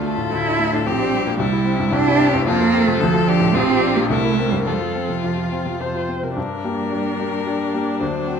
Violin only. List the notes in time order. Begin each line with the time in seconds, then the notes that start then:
0.05 A4
0.87 G4
1.39 E4
1.93 G4
2.47 F4
3.00 A4
3.28 G4
3.54 F4
4.10 E4
4.66 F4
6.36 A#4
8.00 C5